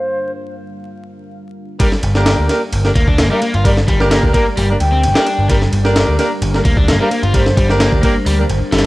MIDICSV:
0, 0, Header, 1, 8, 480
1, 0, Start_track
1, 0, Key_signature, -2, "minor"
1, 0, Tempo, 461538
1, 1874, Time_signature, 4, 2, 24, 8
1, 9215, End_track
2, 0, Start_track
2, 0, Title_t, "Flute"
2, 0, Program_c, 0, 73
2, 0, Note_on_c, 0, 72, 81
2, 320, Note_off_c, 0, 72, 0
2, 3442, Note_on_c, 0, 77, 94
2, 3589, Note_off_c, 0, 77, 0
2, 3792, Note_on_c, 0, 74, 91
2, 3950, Note_off_c, 0, 74, 0
2, 4994, Note_on_c, 0, 79, 93
2, 5669, Note_off_c, 0, 79, 0
2, 7284, Note_on_c, 0, 77, 97
2, 7430, Note_off_c, 0, 77, 0
2, 7642, Note_on_c, 0, 72, 93
2, 8004, Note_off_c, 0, 72, 0
2, 9215, End_track
3, 0, Start_track
3, 0, Title_t, "Ambient pad"
3, 0, Program_c, 1, 92
3, 0, Note_on_c, 1, 55, 76
3, 0, Note_on_c, 1, 62, 70
3, 0, Note_on_c, 1, 70, 72
3, 0, Note_on_c, 1, 77, 85
3, 1834, Note_off_c, 1, 70, 0
3, 1835, Note_off_c, 1, 55, 0
3, 1835, Note_off_c, 1, 62, 0
3, 1855, Note_off_c, 1, 77, 0
3, 1873, Note_on_c, 1, 74, 96
3, 1875, Note_on_c, 1, 70, 79
3, 1876, Note_on_c, 1, 55, 84
3, 1876, Note_on_c, 1, 62, 75
3, 5700, Note_off_c, 1, 74, 0
3, 5718, Note_on_c, 1, 72, 91
3, 9215, Note_off_c, 1, 55, 0
3, 9215, Note_off_c, 1, 62, 0
3, 9215, Note_off_c, 1, 70, 0
3, 9215, Note_off_c, 1, 72, 0
3, 9215, End_track
4, 0, Start_track
4, 0, Title_t, "Horn section"
4, 0, Program_c, 2, 61
4, 1872, Note_on_c, 2, 67, 74
4, 1873, Note_on_c, 2, 58, 82
4, 1873, Note_on_c, 2, 62, 84
4, 1873, Note_on_c, 2, 70, 89
4, 1945, Note_off_c, 2, 67, 0
4, 1946, Note_off_c, 2, 58, 0
4, 1946, Note_off_c, 2, 62, 0
4, 1946, Note_off_c, 2, 70, 0
4, 2239, Note_on_c, 2, 58, 95
4, 2239, Note_on_c, 2, 62, 95
4, 2239, Note_on_c, 2, 67, 85
4, 2239, Note_on_c, 2, 70, 104
4, 2566, Note_off_c, 2, 58, 0
4, 2566, Note_off_c, 2, 62, 0
4, 2566, Note_off_c, 2, 67, 0
4, 2566, Note_off_c, 2, 70, 0
4, 2593, Note_on_c, 2, 58, 96
4, 2593, Note_on_c, 2, 62, 95
4, 2593, Note_on_c, 2, 67, 85
4, 2593, Note_on_c, 2, 70, 104
4, 2709, Note_off_c, 2, 58, 0
4, 2709, Note_off_c, 2, 62, 0
4, 2709, Note_off_c, 2, 67, 0
4, 2709, Note_off_c, 2, 70, 0
4, 2958, Note_on_c, 2, 58, 86
4, 2958, Note_on_c, 2, 62, 85
4, 2958, Note_on_c, 2, 70, 94
4, 2959, Note_on_c, 2, 67, 75
4, 3024, Note_off_c, 2, 58, 0
4, 3024, Note_off_c, 2, 62, 0
4, 3024, Note_off_c, 2, 67, 0
4, 3024, Note_off_c, 2, 70, 0
4, 3438, Note_on_c, 2, 58, 87
4, 3438, Note_on_c, 2, 70, 95
4, 3439, Note_on_c, 2, 62, 85
4, 3440, Note_on_c, 2, 67, 80
4, 3543, Note_off_c, 2, 58, 0
4, 3543, Note_off_c, 2, 62, 0
4, 3543, Note_off_c, 2, 70, 0
4, 3544, Note_off_c, 2, 67, 0
4, 3792, Note_on_c, 2, 67, 76
4, 3793, Note_on_c, 2, 58, 85
4, 3793, Note_on_c, 2, 62, 79
4, 3793, Note_on_c, 2, 70, 92
4, 3865, Note_off_c, 2, 67, 0
4, 3866, Note_off_c, 2, 58, 0
4, 3866, Note_off_c, 2, 62, 0
4, 3866, Note_off_c, 2, 70, 0
4, 4159, Note_on_c, 2, 62, 99
4, 4160, Note_on_c, 2, 58, 98
4, 4160, Note_on_c, 2, 67, 89
4, 4160, Note_on_c, 2, 70, 106
4, 4486, Note_off_c, 2, 58, 0
4, 4486, Note_off_c, 2, 62, 0
4, 4486, Note_off_c, 2, 70, 0
4, 4487, Note_off_c, 2, 67, 0
4, 4512, Note_on_c, 2, 58, 97
4, 4512, Note_on_c, 2, 67, 89
4, 4512, Note_on_c, 2, 70, 106
4, 4513, Note_on_c, 2, 62, 96
4, 4628, Note_off_c, 2, 58, 0
4, 4628, Note_off_c, 2, 70, 0
4, 4629, Note_off_c, 2, 62, 0
4, 4629, Note_off_c, 2, 67, 0
4, 4879, Note_on_c, 2, 62, 83
4, 4880, Note_on_c, 2, 58, 84
4, 4880, Note_on_c, 2, 70, 91
4, 4881, Note_on_c, 2, 67, 76
4, 4945, Note_off_c, 2, 58, 0
4, 4945, Note_off_c, 2, 62, 0
4, 4945, Note_off_c, 2, 67, 0
4, 4945, Note_off_c, 2, 70, 0
4, 5359, Note_on_c, 2, 62, 88
4, 5360, Note_on_c, 2, 67, 79
4, 5361, Note_on_c, 2, 58, 88
4, 5361, Note_on_c, 2, 70, 95
4, 5464, Note_off_c, 2, 58, 0
4, 5464, Note_off_c, 2, 62, 0
4, 5464, Note_off_c, 2, 67, 0
4, 5464, Note_off_c, 2, 70, 0
4, 5714, Note_on_c, 2, 58, 82
4, 5714, Note_on_c, 2, 62, 83
4, 5714, Note_on_c, 2, 70, 89
4, 5715, Note_on_c, 2, 67, 78
4, 5786, Note_off_c, 2, 58, 0
4, 5786, Note_off_c, 2, 62, 0
4, 5786, Note_off_c, 2, 70, 0
4, 5787, Note_off_c, 2, 67, 0
4, 6079, Note_on_c, 2, 58, 94
4, 6079, Note_on_c, 2, 62, 97
4, 6079, Note_on_c, 2, 67, 87
4, 6079, Note_on_c, 2, 70, 102
4, 6406, Note_off_c, 2, 58, 0
4, 6406, Note_off_c, 2, 62, 0
4, 6406, Note_off_c, 2, 67, 0
4, 6406, Note_off_c, 2, 70, 0
4, 6433, Note_on_c, 2, 62, 98
4, 6433, Note_on_c, 2, 67, 92
4, 6434, Note_on_c, 2, 58, 102
4, 6434, Note_on_c, 2, 70, 111
4, 6549, Note_off_c, 2, 58, 0
4, 6549, Note_off_c, 2, 62, 0
4, 6549, Note_off_c, 2, 67, 0
4, 6549, Note_off_c, 2, 70, 0
4, 6800, Note_on_c, 2, 62, 84
4, 6801, Note_on_c, 2, 58, 86
4, 6801, Note_on_c, 2, 67, 76
4, 6801, Note_on_c, 2, 70, 93
4, 6865, Note_off_c, 2, 58, 0
4, 6865, Note_off_c, 2, 62, 0
4, 6865, Note_off_c, 2, 67, 0
4, 6865, Note_off_c, 2, 70, 0
4, 7281, Note_on_c, 2, 58, 93
4, 7281, Note_on_c, 2, 67, 80
4, 7281, Note_on_c, 2, 70, 101
4, 7282, Note_on_c, 2, 62, 85
4, 7384, Note_off_c, 2, 58, 0
4, 7384, Note_off_c, 2, 70, 0
4, 7385, Note_off_c, 2, 62, 0
4, 7385, Note_off_c, 2, 67, 0
4, 7634, Note_on_c, 2, 62, 84
4, 7634, Note_on_c, 2, 67, 72
4, 7635, Note_on_c, 2, 58, 85
4, 7635, Note_on_c, 2, 70, 92
4, 7706, Note_off_c, 2, 62, 0
4, 7706, Note_off_c, 2, 67, 0
4, 7707, Note_off_c, 2, 58, 0
4, 7707, Note_off_c, 2, 70, 0
4, 7999, Note_on_c, 2, 58, 95
4, 7999, Note_on_c, 2, 62, 92
4, 7999, Note_on_c, 2, 70, 104
4, 8000, Note_on_c, 2, 67, 87
4, 8326, Note_off_c, 2, 58, 0
4, 8326, Note_off_c, 2, 62, 0
4, 8326, Note_off_c, 2, 67, 0
4, 8326, Note_off_c, 2, 70, 0
4, 8353, Note_on_c, 2, 58, 94
4, 8353, Note_on_c, 2, 62, 95
4, 8353, Note_on_c, 2, 67, 91
4, 8353, Note_on_c, 2, 70, 103
4, 8469, Note_off_c, 2, 58, 0
4, 8469, Note_off_c, 2, 62, 0
4, 8469, Note_off_c, 2, 67, 0
4, 8469, Note_off_c, 2, 70, 0
4, 8721, Note_on_c, 2, 58, 83
4, 8721, Note_on_c, 2, 67, 76
4, 8721, Note_on_c, 2, 70, 90
4, 8722, Note_on_c, 2, 62, 82
4, 8786, Note_off_c, 2, 58, 0
4, 8786, Note_off_c, 2, 62, 0
4, 8786, Note_off_c, 2, 67, 0
4, 8786, Note_off_c, 2, 70, 0
4, 9215, End_track
5, 0, Start_track
5, 0, Title_t, "Overdriven electric guitar"
5, 0, Program_c, 3, 29
5, 1873, Note_on_c, 3, 55, 104
5, 1985, Note_off_c, 3, 55, 0
5, 3075, Note_on_c, 3, 58, 77
5, 3186, Note_off_c, 3, 58, 0
5, 3198, Note_on_c, 3, 62, 76
5, 3301, Note_off_c, 3, 62, 0
5, 3315, Note_on_c, 3, 58, 82
5, 3426, Note_off_c, 3, 58, 0
5, 3437, Note_on_c, 3, 55, 101
5, 3539, Note_off_c, 3, 55, 0
5, 3559, Note_on_c, 3, 58, 80
5, 3676, Note_off_c, 3, 58, 0
5, 3685, Note_on_c, 3, 65, 79
5, 3785, Note_off_c, 3, 65, 0
5, 3799, Note_on_c, 3, 55, 87
5, 3908, Note_off_c, 3, 55, 0
5, 4033, Note_on_c, 3, 55, 79
5, 4154, Note_off_c, 3, 55, 0
5, 4273, Note_on_c, 3, 58, 88
5, 4385, Note_off_c, 3, 58, 0
5, 4517, Note_on_c, 3, 58, 76
5, 4635, Note_off_c, 3, 58, 0
5, 4755, Note_on_c, 3, 55, 83
5, 4866, Note_off_c, 3, 55, 0
5, 5117, Note_on_c, 3, 60, 80
5, 5219, Note_off_c, 3, 60, 0
5, 5360, Note_on_c, 3, 62, 81
5, 5702, Note_off_c, 3, 62, 0
5, 5712, Note_on_c, 3, 55, 105
5, 5824, Note_off_c, 3, 55, 0
5, 6916, Note_on_c, 3, 58, 79
5, 7026, Note_off_c, 3, 58, 0
5, 7042, Note_on_c, 3, 62, 76
5, 7143, Note_off_c, 3, 62, 0
5, 7156, Note_on_c, 3, 58, 87
5, 7266, Note_off_c, 3, 58, 0
5, 7282, Note_on_c, 3, 55, 102
5, 7382, Note_off_c, 3, 55, 0
5, 7393, Note_on_c, 3, 58, 76
5, 7513, Note_off_c, 3, 58, 0
5, 7516, Note_on_c, 3, 65, 78
5, 7620, Note_off_c, 3, 65, 0
5, 7632, Note_on_c, 3, 55, 85
5, 7745, Note_off_c, 3, 55, 0
5, 7873, Note_on_c, 3, 55, 77
5, 7994, Note_off_c, 3, 55, 0
5, 8113, Note_on_c, 3, 58, 81
5, 8225, Note_off_c, 3, 58, 0
5, 8349, Note_on_c, 3, 58, 76
5, 8472, Note_off_c, 3, 58, 0
5, 8594, Note_on_c, 3, 55, 86
5, 8705, Note_off_c, 3, 55, 0
5, 9073, Note_on_c, 3, 55, 85
5, 9194, Note_off_c, 3, 55, 0
5, 9215, End_track
6, 0, Start_track
6, 0, Title_t, "Picked electric bass"
6, 0, Program_c, 4, 34
6, 2117, Note_on_c, 4, 31, 96
6, 2412, Note_off_c, 4, 31, 0
6, 2484, Note_on_c, 4, 38, 79
6, 2556, Note_off_c, 4, 38, 0
6, 2841, Note_on_c, 4, 31, 100
6, 2999, Note_off_c, 4, 31, 0
6, 3073, Note_on_c, 4, 38, 91
6, 3320, Note_on_c, 4, 31, 91
6, 3335, Note_off_c, 4, 38, 0
6, 3400, Note_off_c, 4, 31, 0
6, 3687, Note_on_c, 4, 31, 79
6, 3975, Note_off_c, 4, 31, 0
6, 4037, Note_on_c, 4, 31, 99
6, 4332, Note_off_c, 4, 31, 0
6, 4402, Note_on_c, 4, 38, 82
6, 4476, Note_off_c, 4, 38, 0
6, 4765, Note_on_c, 4, 31, 99
6, 4921, Note_off_c, 4, 31, 0
6, 4997, Note_on_c, 4, 38, 96
6, 5240, Note_on_c, 4, 31, 91
6, 5256, Note_off_c, 4, 38, 0
6, 5320, Note_off_c, 4, 31, 0
6, 5602, Note_on_c, 4, 31, 83
6, 5892, Note_off_c, 4, 31, 0
6, 5959, Note_on_c, 4, 31, 95
6, 6253, Note_off_c, 4, 31, 0
6, 6329, Note_on_c, 4, 38, 79
6, 6399, Note_off_c, 4, 38, 0
6, 6677, Note_on_c, 4, 31, 99
6, 6837, Note_off_c, 4, 31, 0
6, 6918, Note_on_c, 4, 38, 94
6, 7160, Note_on_c, 4, 31, 93
6, 7175, Note_off_c, 4, 38, 0
6, 7240, Note_off_c, 4, 31, 0
6, 7522, Note_on_c, 4, 31, 80
6, 7812, Note_off_c, 4, 31, 0
6, 7875, Note_on_c, 4, 31, 97
6, 8171, Note_off_c, 4, 31, 0
6, 8242, Note_on_c, 4, 38, 78
6, 8316, Note_off_c, 4, 38, 0
6, 8597, Note_on_c, 4, 38, 94
6, 8757, Note_off_c, 4, 38, 0
6, 8837, Note_on_c, 4, 31, 106
6, 8956, Note_off_c, 4, 31, 0
6, 9074, Note_on_c, 4, 31, 97
6, 9215, Note_off_c, 4, 31, 0
6, 9215, End_track
7, 0, Start_track
7, 0, Title_t, "Muted picked electric bass strokes"
7, 8962, Note_on_c, 9, 29, 45
7, 9066, Note_off_c, 9, 29, 0
7, 9215, End_track
8, 0, Start_track
8, 0, Title_t, "Drums"
8, 1870, Note_on_c, 9, 51, 88
8, 1871, Note_on_c, 9, 36, 114
8, 1974, Note_off_c, 9, 51, 0
8, 1975, Note_off_c, 9, 36, 0
8, 1997, Note_on_c, 9, 38, 46
8, 2101, Note_off_c, 9, 38, 0
8, 2110, Note_on_c, 9, 51, 68
8, 2214, Note_off_c, 9, 51, 0
8, 2237, Note_on_c, 9, 38, 54
8, 2341, Note_off_c, 9, 38, 0
8, 2350, Note_on_c, 9, 38, 122
8, 2350, Note_on_c, 9, 51, 89
8, 2454, Note_off_c, 9, 38, 0
8, 2454, Note_off_c, 9, 51, 0
8, 2594, Note_on_c, 9, 38, 36
8, 2594, Note_on_c, 9, 51, 70
8, 2698, Note_off_c, 9, 38, 0
8, 2698, Note_off_c, 9, 51, 0
8, 2835, Note_on_c, 9, 51, 87
8, 2939, Note_off_c, 9, 51, 0
8, 2962, Note_on_c, 9, 38, 48
8, 3066, Note_off_c, 9, 38, 0
8, 3073, Note_on_c, 9, 36, 103
8, 3074, Note_on_c, 9, 51, 69
8, 3177, Note_off_c, 9, 36, 0
8, 3178, Note_off_c, 9, 51, 0
8, 3200, Note_on_c, 9, 36, 96
8, 3304, Note_off_c, 9, 36, 0
8, 3311, Note_on_c, 9, 38, 117
8, 3311, Note_on_c, 9, 51, 89
8, 3415, Note_off_c, 9, 38, 0
8, 3415, Note_off_c, 9, 51, 0
8, 3554, Note_on_c, 9, 51, 68
8, 3658, Note_off_c, 9, 51, 0
8, 3681, Note_on_c, 9, 51, 44
8, 3785, Note_off_c, 9, 51, 0
8, 3795, Note_on_c, 9, 36, 114
8, 3797, Note_on_c, 9, 51, 91
8, 3899, Note_off_c, 9, 36, 0
8, 3901, Note_off_c, 9, 51, 0
8, 3924, Note_on_c, 9, 38, 53
8, 4028, Note_off_c, 9, 38, 0
8, 4035, Note_on_c, 9, 36, 101
8, 4037, Note_on_c, 9, 51, 67
8, 4139, Note_off_c, 9, 36, 0
8, 4141, Note_off_c, 9, 51, 0
8, 4164, Note_on_c, 9, 38, 45
8, 4268, Note_off_c, 9, 38, 0
8, 4276, Note_on_c, 9, 38, 122
8, 4276, Note_on_c, 9, 51, 92
8, 4380, Note_off_c, 9, 38, 0
8, 4380, Note_off_c, 9, 51, 0
8, 4401, Note_on_c, 9, 36, 97
8, 4505, Note_off_c, 9, 36, 0
8, 4515, Note_on_c, 9, 36, 99
8, 4517, Note_on_c, 9, 51, 73
8, 4619, Note_off_c, 9, 36, 0
8, 4621, Note_off_c, 9, 51, 0
8, 4756, Note_on_c, 9, 46, 80
8, 4860, Note_off_c, 9, 46, 0
8, 4995, Note_on_c, 9, 51, 70
8, 5099, Note_off_c, 9, 51, 0
8, 5236, Note_on_c, 9, 51, 87
8, 5340, Note_off_c, 9, 51, 0
8, 5360, Note_on_c, 9, 38, 120
8, 5464, Note_off_c, 9, 38, 0
8, 5476, Note_on_c, 9, 51, 69
8, 5580, Note_off_c, 9, 51, 0
8, 5715, Note_on_c, 9, 51, 92
8, 5716, Note_on_c, 9, 36, 113
8, 5819, Note_off_c, 9, 51, 0
8, 5820, Note_off_c, 9, 36, 0
8, 5844, Note_on_c, 9, 38, 45
8, 5948, Note_off_c, 9, 38, 0
8, 5956, Note_on_c, 9, 51, 68
8, 6060, Note_off_c, 9, 51, 0
8, 6084, Note_on_c, 9, 38, 53
8, 6188, Note_off_c, 9, 38, 0
8, 6197, Note_on_c, 9, 38, 125
8, 6197, Note_on_c, 9, 51, 96
8, 6301, Note_off_c, 9, 38, 0
8, 6301, Note_off_c, 9, 51, 0
8, 6437, Note_on_c, 9, 38, 39
8, 6437, Note_on_c, 9, 51, 67
8, 6541, Note_off_c, 9, 38, 0
8, 6541, Note_off_c, 9, 51, 0
8, 6676, Note_on_c, 9, 51, 92
8, 6780, Note_off_c, 9, 51, 0
8, 6806, Note_on_c, 9, 38, 48
8, 6910, Note_off_c, 9, 38, 0
8, 6916, Note_on_c, 9, 36, 99
8, 6916, Note_on_c, 9, 51, 71
8, 7020, Note_off_c, 9, 36, 0
8, 7020, Note_off_c, 9, 51, 0
8, 7042, Note_on_c, 9, 36, 98
8, 7146, Note_off_c, 9, 36, 0
8, 7158, Note_on_c, 9, 38, 118
8, 7158, Note_on_c, 9, 51, 87
8, 7262, Note_off_c, 9, 38, 0
8, 7262, Note_off_c, 9, 51, 0
8, 7397, Note_on_c, 9, 51, 67
8, 7501, Note_off_c, 9, 51, 0
8, 7521, Note_on_c, 9, 51, 45
8, 7625, Note_off_c, 9, 51, 0
8, 7634, Note_on_c, 9, 51, 88
8, 7636, Note_on_c, 9, 36, 109
8, 7738, Note_off_c, 9, 51, 0
8, 7740, Note_off_c, 9, 36, 0
8, 7762, Note_on_c, 9, 38, 54
8, 7866, Note_off_c, 9, 38, 0
8, 7876, Note_on_c, 9, 36, 98
8, 7877, Note_on_c, 9, 51, 68
8, 7980, Note_off_c, 9, 36, 0
8, 7981, Note_off_c, 9, 51, 0
8, 8003, Note_on_c, 9, 38, 42
8, 8107, Note_off_c, 9, 38, 0
8, 8114, Note_on_c, 9, 38, 124
8, 8114, Note_on_c, 9, 51, 94
8, 8218, Note_off_c, 9, 38, 0
8, 8218, Note_off_c, 9, 51, 0
8, 8242, Note_on_c, 9, 36, 97
8, 8346, Note_off_c, 9, 36, 0
8, 8353, Note_on_c, 9, 51, 73
8, 8355, Note_on_c, 9, 36, 98
8, 8457, Note_off_c, 9, 51, 0
8, 8459, Note_off_c, 9, 36, 0
8, 8594, Note_on_c, 9, 46, 83
8, 8698, Note_off_c, 9, 46, 0
8, 8835, Note_on_c, 9, 51, 68
8, 8939, Note_off_c, 9, 51, 0
8, 9072, Note_on_c, 9, 38, 87
8, 9072, Note_on_c, 9, 51, 67
8, 9135, Note_off_c, 9, 38, 0
8, 9135, Note_off_c, 9, 51, 0
8, 9135, Note_on_c, 9, 38, 90
8, 9135, Note_on_c, 9, 51, 68
8, 9215, Note_off_c, 9, 38, 0
8, 9215, Note_off_c, 9, 51, 0
8, 9215, End_track
0, 0, End_of_file